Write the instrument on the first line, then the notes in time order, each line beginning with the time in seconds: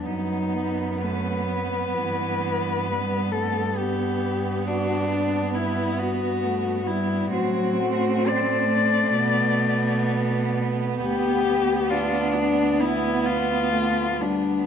cello
0.06 F#2 F#3 B3 D#4
0.55 B3
1.03 A3 B4
1.50 F#3
1.95 G2 E3
2.87 G3
3.31 A3 A4
3.77 B3 G4
4.67 D4 F#4
5.12 D4
5.55 B3 E4
6.00 F#4
6.44 A3
6.86 G3 E4
7.32 A2 F#3 C4 F#4
7.80 A3
8.28 D5
9.20 B2 B3
10.99 D2 B3 G4
11.90 D4 F4
12.34 D4
12.80 B3 E4
13.26 F4
13.72 A3
14.21 G3 D4